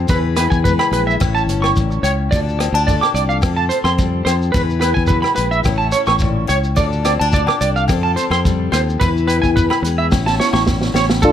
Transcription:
0.08 E2 E3 E4 G#4 B4, kick, shekere
0.36 E4 B4, cross-stick, closed hi-hat, low agogo, shekere
0.50 E2 G#5, kick, shekere
0.64 G#3 B4, kick, shekere
0.79 B5, cross-stick, low agogo
0.92 A#1 G#4 B4, closed hi-hat
1.07 E5, shekere
1.20 A1 A2 C#4 E4 C#5, kick, cross-stick, low agogo, shekere
1.35 A5, shekere
1.47 G1 C#4, closed hi-hat, shekere
1.62 C#6, cross-stick, low agogo
1.76 A1 A#2, kick, shekere
1.91 shekere
2.03 C#2 C#3 C#5, closed hi-hat, low agogo, shekere
2.31 D2 D3 D4 F4 D5, kick, shekere
2.36 A4
2.49 shekere
2.59 C4, muted clean electric guitar stroke, cross-stick, closed hi-hat, low agogo, shekere
2.73 D2 D4 A5
2.87 A3 A4 D5, kick, shekere
3.01 D6, cross-stick, low agogo
3.14 C2 F4 D5, closed hi-hat, shekere
3.29 F5, shekere
3.42 F2 F3 C4 F4 A4, kick, cross-stick, low agogo, shekere
3.56 A5
3.69 C4 C5, closed hi-hat, shekere
3.84 F2 C6, cross-stick, low agogo, shekere
3.98 G3, kick, shekere
4.25 F2 F3 C5, cross-stick, closed hi-hat, low agogo, shekere
4.42 shekere
4.52 E2 E3 E4 B4, kick, shekere
4.56 G#4 B4
4.70 shekere
4.81 E4 B4, cross-stick, closed hi-hat, low agogo, shekere
4.94 E2 G#5, kick
5.07 F#3 B4, kick, shekere
5.22 B5, cross-stick, low agogo
5.36 A#1 G#3 B4, closed hi-hat, shekere
5.51 E5, shekere
5.64 A1 A2 C#4 E4 C#5, kick, cross-stick, low agogo, shekere
5.78 A5
5.92 C#4 C#5, closed hi-hat, shekere
6.06 A1 C#6, cross-stick, low agogo, shekere
6.19 A#2, kick, shekere
6.47 C#2 C#3 C#5, closed hi-hat, low agogo, shekere
6.64 shekere
6.76 D2 D3 D4 F4 A4 D5, kick, shekere
6.92 shekere
7.05 C4 D5, cross-stick, closed hi-hat, low agogo, shekere
7.20 D2 D4 A5
7.32 D3 D5, kick, shekere
7.47 D6, cross-stick, low agogo
7.61 C2 D5, muted steel-string acoustic guitar stroke, closed hi-hat, shekere
7.76 F5, shekere
7.88 F2 F3 C4 F4, kick, cross-stick, low agogo, shekere
7.92 A4
8.03 A5
8.16 C4 C5, closed hi-hat, shekere
8.30 F2 C6, cross-stick, low agogo, shekere
8.45 G3, kick, shekere
8.72 D#2 F3 C5, cross-stick, closed hi-hat, low agogo, shekere
8.89 shekere
9.00 E2 E3 E4 B4, muted steel-string acoustic guitar stroke, kick, shekere
9.17 shekere
9.27 E4 B4, closed hi-hat, low agogo, shekere
9.42 E2 G#5, kick, shekere
9.56 G#3 B4, kick, shekere
9.70 B5, cross-stick, low agogo, shekere
9.82 E2, muted clean electric guitar stroke, closed hi-hat, shekere
9.86 G#4
9.98 E5
10.12 A1 A2 C#4 E4 C#5, kick, snare, low agogo, shekere
10.26 A5, snare, shekere
10.40 C#4 C#5, snare, shekere
10.53 A1 C#6, snare, low agogo, shekere
10.67 A#2, kick, snare, shekere
10.81 snare, shekere
10.94 A1 C#3 C#5, snare, low agogo, shekere
11.10 snare
11.22 D2 D3 D4 F4 A4, kick, shekere

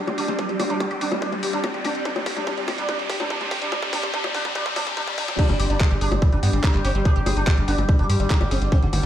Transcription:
Already playing: G3 C4 D4 G4 G5, riser
0.07 G3 G4, closed hi-hat, high bongo
0.18 G1 D4 G4, open hi-hat
0.28 G1 G3, closed hi-hat, high bongo
0.39 G3 D4, kick, closed hi-hat
0.49 G1 G3, closed hi-hat
0.60 G3 G4, open hi-hat, high bongo
0.70 G1 G3 D4, closed hi-hat
0.80 G3 G4, kick, closed hi-hat, high bongo
0.91 G1 G3 G4, closed hi-hat
1.01 G1 D4 G4, open hi-hat
1.12 G1 G3, closed hi-hat, high bongo
1.22 G3 D4, kick, closed hi-hat
1.32 G1 G3, closed hi-hat, high bongo
1.43 G2 G3 G4, open hi-hat
1.53 G3 D4, closed hi-hat
1.64 G3 G4, kick, closed hi-hat, high bongo
1.74 G3 G4, closed hi-hat
1.84 D4 G4, open hi-hat, high bongo
1.95 G3, closed hi-hat
2.05 G3 D4, kick, closed hi-hat
2.16 G3, closed hi-hat, high bongo
2.26 G3 G4, kick, open hi-hat
2.37 G3 D4, closed hi-hat, high bongo
2.47 G3 D4, kick, closed hi-hat
2.57 G1 G3, closed hi-hat
2.68 G3 G4, kick, open hi-hat, high bongo
2.78 G3 D4, closed hi-hat
2.89 G3 D4, kick, closed hi-hat, high bongo
2.99 G1 G3, closed hi-hat
3.10 G2 G3 G4, kick, open hi-hat
3.20 G3 D4, closed hi-hat, high bongo
3.30 G3 D4, kick, closed hi-hat
3.41 G3, closed hi-hat, high bongo
3.51 G3 G4, kick, open hi-hat
3.62 G3 D4, closed hi-hat
3.72 G3 D4, kick, closed hi-hat, high bongo
3.82 G3, kick, closed hi-hat
3.93 G3 D4, kick, open hi-hat, high bongo
4.03 G3, kick, closed hi-hat
4.14 G3 D4, kick, closed hi-hat
4.24 G3, kick, closed hi-hat, high bongo
4.34 G3 D4, kick, open hi-hat
4.45 G3, kick, closed hi-hat, high bongo
4.55 G3 D4, kick, closed hi-hat
4.66 G3, kick, closed hi-hat
4.76 G3 D4, kick, open hi-hat, high bongo
4.87 G3, kick, closed hi-hat
4.97 G3 D4, kick, closed hi-hat, high bongo
5.07 G3, kick, closed hi-hat
5.18 G3 D4, kick, open hi-hat
5.28 G3, kick, closed hi-hat, high bongo
5.39 G3 D4 G4, kick, closed hi-hat, crash
5.49 G1 G3, closed hi-hat, high bongo
5.60 G1 G3 G4, open hi-hat
5.70 G1 G3 D4 G4, closed hi-hat
5.80 G3 G#4, kick, clap, closed hi-hat
5.91 G1 G3 G4, closed hi-hat
6.01 G1 D4 G#4, open hi-hat
6.12 G1 G3, closed hi-hat, high bongo
6.22 G3, kick, closed hi-hat
6.32 G1 G3 D4, closed hi-hat
6.43 G2 G3 B3, open hi-hat
6.53 G#1 G3, closed hi-hat
6.62 G3 D#4 G5, kick, clap, closed hi-hat, high bongo
6.74 G1 G3, clap, closed hi-hat
6.85 G1 C4 G4, open hi-hat
6.95 G1 G3, closed hi-hat
7.05 D4 G#4, kick, closed hi-hat
7.16 G1 G3 G4, closed hi-hat
7.26 G1 G3 G#4, open hi-hat, high bongo
7.37 G1 D4, closed hi-hat
7.47 G3, kick, clap, closed hi-hat
7.57 G1 G3, closed hi-hat
7.68 G1 B3 D4, open hi-hat
7.78 G1 G3, closed hi-hat, high bongo
7.89 G3, kick, closed hi-hat
7.99 G1 G3 D4, closed hi-hat
8.10 G2 G3 G4, open hi-hat
8.20 G#1 G3, closed hi-hat
8.30 D#4 G#4, kick, clap, closed hi-hat
8.41 G1 G3 G4, closed hi-hat, high bongo
8.51 G1 C4 G#4, open hi-hat
8.62 G1 G3, closed hi-hat
8.72 G3 C4 D4, kick, closed hi-hat
8.82 G1 D3 G3, closed hi-hat
8.93 G1 D3 B3, open hi-hat, high bongo

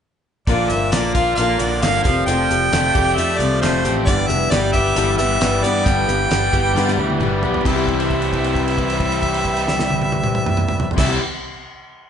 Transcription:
0.47 A#1 A#2 D3 F3 A#3 D4 F4 A#4 D5, kick, closed hi-hat
0.69 G1 D4 F4 E5, closed hi-hat
0.74 A#3
0.92 A#1 D3 A#3 D4 D5, snare, closed hi-hat
0.96 F4
1.14 A#3 D4 F4 F5, kick, closed hi-hat
1.35 A#1 A#2 D3 F5, closed hi-hat
1.39 A#3 D4 F4
1.59 A#1 D3 D4 F4 D5, closed hi-hat
1.64 A#3
1.81 G1 D3 A#3 F5, snare, closed hi-hat
1.86 D4 F4
2.03 F1 F3 G3 C4 F4 G4 A4 F5, kick, closed hi-hat
2.08 A3
2.26 F1 F3 A3 C4 G5, closed hi-hat
2.30 G4
2.50 F1 A3 C4 G4, closed hi-hat
2.73 F1 F3 A3 C4 G4, snare, closed hi-hat
2.95 F1 A3 C4 G4, kick, closed hi-hat
3.16 F2 F3 A3 C4 G4 E5, closed hi-hat
3.38 C2 F3 A3 C4 G4 D5, closed hi-hat
3.61 F1 F3 A3 C4 G4 C5, snare, closed hi-hat
3.85 A1 A3 C4 G4, closed hi-hat
4.05 G1 G2 D3 E3 G3 B3 E4 G4 B4 D5, kick, closed hi-hat
4.28 F1 G3 B3 G4 E5, closed hi-hat
4.32 E3
4.51 G1 E3 G3 B3 G4 D5, snare, closed hi-hat
4.72 G3 B3 G4 E5, kick, closed hi-hat
4.77 E3
4.96 G1 G2 D3 E3 G3 B3 G4, closed hi-hat
5.17 G1 E3 G3 B3 G4 E5, closed hi-hat
5.41 G1 E3 G3 B3 G4, snare, closed hi-hat
5.63 G2 E3 G3 B3 G4 D5, closed hi-hat
5.85 G1 G2 D3 E3 G3 B3 G4 G5, kick, closed hi-hat
6.08 G1 E3 G3 B3 G4, closed hi-hat
6.30 G1 E3 G3 B3 G4, snare, closed hi-hat
6.53 G1 E3 G3 B3 G4, kick, closed hi-hat
6.75 G2 D3 E3 G3 B3 G4, snare
6.88 snare
6.97 D2 E3 G3 B3 G4
7.10 high tom
7.20 G1 E3 G3 B3 G4, mid tom
7.43 B1 E3 G3 B3 G4, floor tom
7.54 floor tom
7.61 C3 E3 C4
7.65 C2 E3 G3 C4 E4 B4 E5, kick, crash
7.76 G4
7.88 kick, crash
8.00 crash
8.10 kick, crash
8.22 crash
8.33 kick, crash
8.44 crash
8.55 kick, crash
8.68 crash
8.78 kick, crash
8.90 crash
9.00 kick, crash
9.12 crash
9.23 kick, crash
9.34 crash
9.45 kick, crash
9.57 crash
9.68 snare
9.79 snare
9.90 high tom
10.02 high tom
10.12 high tom
10.24 mid tom
10.35 mid tom
10.46 mid tom
10.57 mid tom
10.69 mid tom
10.80 floor tom
10.91 C3, floor tom
10.98 C2 E3 G3 C4 E4 B4 E5, kick, snare, crash
11.05 B3 G4

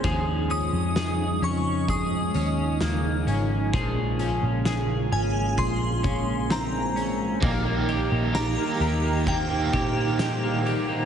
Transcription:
Already playing: G#3 C4 C#4
0.04 D#2 C#3 F3 D#4 G#4, kick, closed hi-hat
0.50 C#4 D#6, closed hi-hat
0.73 F2
0.96 G#4, snare, closed hi-hat
1.42 F2 C#4 C#6, closed hi-hat
1.88 G#4 D#6, kick, closed hi-hat
2.34 D#2 C#4, closed hi-hat
2.81 D#2 A#3, snare, closed hi-hat
3.27 G#1 C#4, closed hi-hat
3.73 A#1 C#3 F3 A#3 F4 G#4, kick, closed hi-hat
4.19 C#4, closed hi-hat
4.43 A#1
4.65 G#4, snare, closed hi-hat
5.12 G#1 C#4 G#5, closed hi-hat
5.58 A#1 G#4 C6, kick, closed hi-hat
6.03 C#4, kick, closed hi-hat
6.50 C4 A#5, snare, closed hi-hat
6.96 C#4, closed hi-hat
7.41 A#1 A#2 D#3 A#3 D#4 G4 A#4 A#5, kick, crash
7.65 A#3
7.89 G4, ride
8.12 A#1 A#3
8.33 D#3 A#3 D#4 G4 A#5, snare, ride, tambourine
8.37 G4
8.58 A#3
8.80 D#2 G4, ride
9.04 A#3
9.25 A#2 D#3 A#3 C5 G5, kick, ride
9.31 D#4 G4
9.50 A#3
9.73 A#2 G4, kick, ride
9.97 A#3
10.19 G4, snare, ride, tambourine
10.43 A#3
10.66 G4, ride
10.89 A#3

